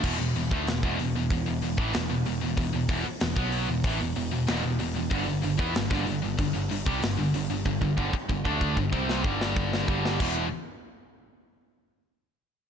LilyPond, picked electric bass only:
\new Staff \with { instrumentName = "Picked electric bass" } { \clef bass \time 4/4 \key e \minor \tempo 4 = 94 e,,16 e,,16 e,,16 d,16 e,,16 e,,16 e,,16 e,,16 e,,16 e,,16 e,,16 a,,16 e,,16 e,,16 e,,16 e,,16 | e,,16 e,,16 e,,16 r16 e,,16 b,,8 e,,16 a,,16 e,,16 e,,16 e,,16 e,,16 e,,16 e,,16 e,,16 | g,,16 g,,16 g,,16 e,16 g,,16 g,,16 g,,16 g,,16 g,,16 g,,16 g,,16 c,16 g,,16 g,,16 g,,16 g,,16 | g,,16 g,,16 g,,16 r16 g,,16 d,8 g,,16 c,8 g,,4 g,,8 |
e,,8 r2. r8 | }